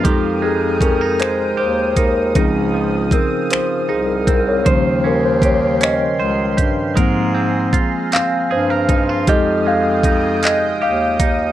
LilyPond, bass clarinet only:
\new Staff \with { instrumentName = "Bass clarinet" } { \clef bass \time 6/8 \key f \minor \tempo 4. = 52 f,2 ees,8 ees,8 | des,4 r8 c,8 c,4 | ees,2 des,8 g,8 | aes,4 r8 g,8 g,4 |
f,2 ees,8 ees,8 | }